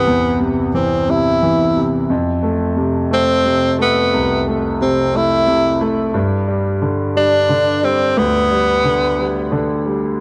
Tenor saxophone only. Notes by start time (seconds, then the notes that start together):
Already playing: B3
0.75 C4
1.10 E4
3.14 C4
3.82 B3
4.82 C4
5.16 E4
7.17 D4
7.85 C4
8.18 B3